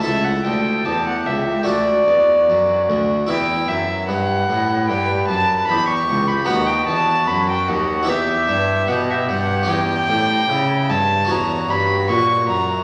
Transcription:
0.01 A3 E4 A4 E5
0.05 C#2
0.24 F#5
0.44 D2 G5
0.85 E2 G4 A5
1.06 F#5
1.26 C#2 E5
1.63 D2 A3 F#4 D5
1.68 D2
2.07 E2
2.47 F#2
2.88 D2
3.27 E2 E4 B4 G5
3.68 F#2 E5
4.08 G2 B4 F#5
4.49 A2
4.88 G2 G5
5.28 F#2 A5
5.68 E2 G4 B5
5.88 C#6
6.09 C#2
6.27 B5
6.45 D#2 B3 F#4 B4 F#5
6.50 D#2
6.66 G5
6.87 E2 A5
7.27 F#2 B5
7.50 G5
7.68 D#2 F#5
8.03 E4 G4 B4
8.07 E2 G4 E5
8.48 G2
8.88 B2 F#5
9.11 E5
9.29 G2 F#5
9.63 C#4 G4 C#5
9.68 E2 G4 G5
10.09 A2
10.49 C#3 E4
10.89 G2 A5
11.25 E2 C#4 F#4 C#5
11.29 E2 F#4 A#5
11.68 G2 B5
12.08 A#2 F#4 C#6
12.49 F#2 A#5

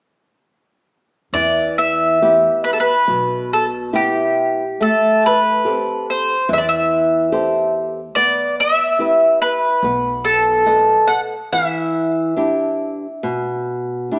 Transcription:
1.33 E2 E3 D5
1.78 E5
2.22 B3 E4 G4
2.64 B4
2.73 A4
2.80 B4
3.08 B1 B2
3.53 A4
3.93 B3 E4 G4
4.79 A1 A3 A4
5.26 B4
5.65 C4 G4 A4
6.10 C5
6.49 E2 E3
6.53 E5
6.58 D5
6.69 E5
7.32 G4 A4 C5
8.15 B1 B3 D5
8.60 E5
8.99 E4 G4 B4
9.42 B4
9.83 B1 B3
10.25 A4
10.66 A4 B4 D#5
11.08 F#5
11.52 E3 E5
12.37 D4 E4 G4
13.23 B2
14.11 D4 E4 G4

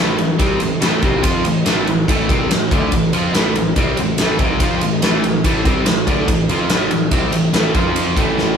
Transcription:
Already playing: A2 E3
0.00 A1 A3
0.18 A1 A2 E3, ride
0.39 C2 C3 G3 C4, kick, ride
0.60 A1 A2 E3, ride
0.80 A1 A2 E3 A3, snare, ride
1.02 C2 C3 G3 C4, kick, ride
1.23 F2 F3 C4 F4, kick, ride
1.45 A1 A2 E3, ride
1.65 A1 A2 E3 A3, snare, ride
1.87 A1 A2 E3, ride
2.08 A1 A2 E3 A3, kick, ride
2.29 C2 C3 G3 C4, kick, ride
2.49 A1 A2 E3, snare, ride
2.71 D2 D3 A3 D4, kick, ride
2.92 A1 A2 E3, kick, ride
3.13 F2 F3 C4 F4, ride
3.33 A1 A2 E3 A3, snare, ride
3.55 A1 A2 E3, ride
3.76 C2 C3 G3 C4, kick, ride
3.97 A1 A2 E3, ride
4.18 A1 A2 E3 A3, snare, ride
4.39 C2 C3 G3 C4, kick, ride
4.60 F2 F3 C4 F4, kick, ride
4.81 A1 A2 E3, ride
5.01 A1 A2 E3 A3, snare, ride
5.23 A1 A2 E3, ride
5.44 A1 A2 E3 A3, kick, ride
5.65 C2 C3 G3 C4, kick, ride
5.85 A1 A2 E3, snare, ride
6.07 D2 D3 A3 D4, kick, ride
6.28 A1 A2 E3, kick, ride
6.49 F2 F3 C4 F4, ride
6.70 A1 A2 E3 A3, snare, ride
6.90 A1 A2 E3, ride
7.11 C2 C3 G3 C4, kick, ride
7.31 A1 A2 E3, ride
7.53 A1 A2 E3 A3, snare, ride
7.75 F2 F3 C4 F4, kick, ride
7.96 ride
8.16 A1 A2 E3 A3, kick, ride
8.38 snare

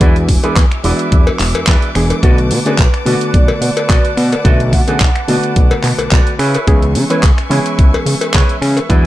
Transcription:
Already playing: G#5
0.01 E2 E3 G#3 B3 D4 E4 F#4 G#4 B4 D5 E5 D6, kick, closed hi-hat
0.16 closed hi-hat
0.28 E1, muted clean electric guitar stroke, kick, open hi-hat
0.44 E2 E3 G#3 B3 D4 E4 G#4 B4 D5, closed hi-hat, cowbell
0.56 E2, kick, clap, closed hi-hat
0.71 finger snap, muted clean electric guitar stroke, closed hi-hat
0.84 E1 E3 G#3 B3 D4 E4 F#4 G#4 B4 D5, open hi-hat
0.99 closed hi-hat
1.12 E2, kick, closed hi-hat
1.27 cowbell
1.40 E1, clap, open hi-hat
1.55 E2, closed hi-hat, cowbell
1.67 E2 E4 G#4 B4 D5, kick, clap, closed hi-hat
1.82 closed hi-hat
1.95 E1 E3 G#3 B3 D4 G#4, finger snap, open hi-hat
2.10 muted clean electric guitar stroke, closed hi-hat, cowbell
2.23 B1 D3 A3 B3 F#4 A4 B4 D5 F#5 A5, kick, closed hi-hat
2.38 closed hi-hat
2.51 B2, muted clean electric guitar stroke, open hi-hat
2.65 D3 A3 B3 C#4 F#4 G#4 A4 B4 D5, closed hi-hat, cowbell
2.78 B1 B4, kick, clap, closed hi-hat
2.93 finger snap, muted clean electric guitar stroke, closed hi-hat
3.06 B2 D3 A3 B3 F#4 A4 B4 D5, open hi-hat
3.21 closed hi-hat
3.34 B1 D5, kick, closed hi-hat
3.48 cowbell
3.61 B2 D5, open hi-hat
3.77 closed hi-hat, cowbell
3.89 B1 F#4 A4 B4 D5, kick, clap, closed hi-hat
4.05 closed hi-hat
4.17 B2, finger snap, open hi-hat
4.32 muted clean electric guitar stroke, closed hi-hat, cowbell
4.44 B1 D3 A3 B3 F#4 A4 B4 D5 E5, kick, closed hi-hat
4.60 closed hi-hat
4.73 B2 F#5, muted clean electric guitar stroke, kick, open hi-hat
4.87 B1 D3 A3 B3 C#4 F#4 G#4 A4 B4 D5, closed hi-hat, cowbell
5.00 B1, kick, clap, closed hi-hat
5.15 finger snap, muted clean electric guitar stroke, closed hi-hat
5.28 B2 D3 A3 B3 F#4 A4 B4 D5, open hi-hat
5.43 closed hi-hat
5.56 B1, kick, closed hi-hat
5.71 cowbell
5.84 B2, clap, open hi-hat
5.98 B1, closed hi-hat, cowbell
6.12 B1 F#4 A4 B4 D5, kick, clap, closed hi-hat
6.27 closed hi-hat
6.39 C#3 E4 G#4 B4 C#5 E5 G#5 C#6, finger snap, open hi-hat
6.54 closed hi-hat, cowbell
6.67 C#2 E3 G#3 B3 C#4 G#4, kick, closed hi-hat
6.82 closed hi-hat
6.95 C#3, muted clean electric guitar stroke, open hi-hat
7.10 E3 G#3 B3 C#4 E4 G#4 B4 C#5, closed hi-hat, cowbell
7.23 C#2, kick, clap, closed hi-hat
7.37 finger snap, muted clean electric guitar stroke, closed hi-hat
7.50 C#3 E3 G#3 B3 C#4 E4 G#4 B4 C#5, open hi-hat
7.66 closed hi-hat
7.79 C#2, kick, closed hi-hat
7.94 cowbell
8.06 C#3, open hi-hat
8.21 closed hi-hat, cowbell
8.34 C#2 E4 G#4 B4 C#5, kick, clap, closed hi-hat
8.49 closed hi-hat
8.62 C#3, finger snap, open hi-hat
8.76 muted clean electric guitar stroke, closed hi-hat, cowbell
8.89 E2 E3 G#3 B3 D4 E4 F#4 G#4 B4 D5 G#5 D6, kick, closed hi-hat

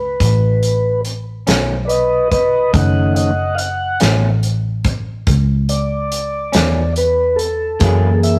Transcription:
Already playing: C#2 B4
0.20 A1, kick, closed hi-hat
0.63 closed hi-hat
1.05 closed hi-hat
1.47 B1 B2 D#3 A3 C#4, snare, closed hi-hat
1.85 B4 D5 D#5
1.89 closed hi-hat
2.31 B4 D#5, kick, closed hi-hat
2.73 F#1 D#3 A3 C#4 D#5 F#5, kick, closed hi-hat
3.15 D#5 F#5, closed hi-hat
3.55 F5 F#5, closed hi-hat
4.00 A1 B2 D#3 A3 C#4, snare, closed hi-hat
4.43 closed hi-hat
4.84 kick, closed hi-hat
5.27 C#2, kick, closed hi-hat
5.69 D5, closed hi-hat
6.12 closed hi-hat
6.52 E2 B2 D#3 A3 C#4, snare, closed hi-hat
6.96 B4, closed hi-hat
7.36 A4, closed hi-hat
7.79 F#2 E3 F#3 A#3 E4 G#4, kick, closed hi-hat
7.84 G#4
8.23 E5, closed hi-hat

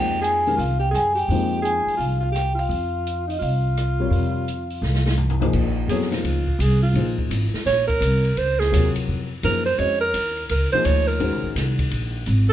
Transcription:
Already playing: F2 F3 G#3 A#3 D#4 G4 C5 G5
0.22 G#4 G#5, closed hi-hat
0.47 D#3 G#3 C#4 G4 A#4, open hi-hat
0.57 C2 F4 F5, open hi-hat
0.80 G4 G5
0.91 F#2 G#4 G#5, cross-stick, closed hi-hat
1.15 G4 G5, open hi-hat
1.28 F2 F3 G#3 A#3 D#4 C5, open hi-hat
1.62 G#4 G#5, closed hi-hat
1.86 muted upright bass stroke, open hi-hat
1.96 C2 F4 F5, open hi-hat
2.20 F4 F5
2.32 G4 G5, cross-stick, closed hi-hat
2.55 F4, open hi-hat
2.59 F5
2.69 F2, open hi-hat
3.07 closed hi-hat
3.27 D#4 D#5, open hi-hat
3.39 C2 F4 F5, open hi-hat
3.77 cross-stick, closed hi-hat
4.00 C3 G3 F4 A#4 C#5
4.10 F2, open hi-hat
4.48 closed hi-hat
4.70 open hi-hat
4.82 C2, snare
4.94 snare
5.06 snare
5.17 floor tom
5.30 floor tom
5.40 F3 A#3 D#4 G#4 C5, floor tom
5.53 A#1, kick, crash
5.88 F2 F#3 B3 E4 G#4 A4 C#5, hi-hat pedal, ride
6.02 snare
6.11 F3 A#3 D#4 F4 G#4 C5, snare, ride
6.23 C#2, ride
6.47 kick
6.59 C2 G#4, hi-hat pedal, ride
6.82 F4
6.94 A#1 F3 A#3 D#4 G#4 C5, ride
7.18 kick
7.30 G#1, hi-hat pedal, ride
7.53 muted upright bass stroke, snare
7.65 A#1 C#5, snare, ride
7.87 A#4, kick, ride
8.01 C2, hi-hat pedal, ride
8.25 ride
8.36 C#2 C5, ride
8.59 G#4, snare
8.72 D#2 C3 F#3 F4 A#4 C#5, hi-hat pedal, ride
8.95 muted upright bass stroke, ride
9.08 F2
9.43 F#2 F3 A#3 D#4 G#4 A#4 C5, hi-hat pedal, ride
9.66 C5, ride
9.78 F2 G#3 C#4 F#4 C5 C#5 D#5, ride
10.01 A#4
10.14 D#2, hi-hat pedal, ride
10.37 ride
10.49 C#2 A#4, ride
10.72 F3 A#3 D#4 G#4 C5, muted upright bass stroke, ride
10.85 D2 C#5, hi-hat pedal, ride
11.07 A#4, ride
11.20 D#2 D#3 G#3 C#4 F#4 C5, ride
11.32 C#2
11.43 A#1
11.55 C2, snare, hi-hat pedal, ride
11.79 kick, ride
11.91 A#1, ride
12.26 G#1, hi-hat pedal, ride
12.49 A4

